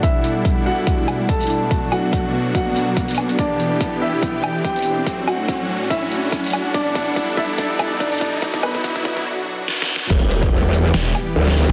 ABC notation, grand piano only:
X:1
M:4/4
L:1/8
Q:"Swing 16ths" 1/4=143
K:Em
V:1 name="Grand piano"
[Ee]3 [Ff]3 [Aa]2- | [Aa] [Ff]3 [Ff]4 | [Dd]3 [Ee]3 [Gg]2- | [Gg] [Ff]3 [Ee]4 |
[Dd]3 [Ee]3 [Dd]2- | [Dd] [B,B]3 z4 | z8 |]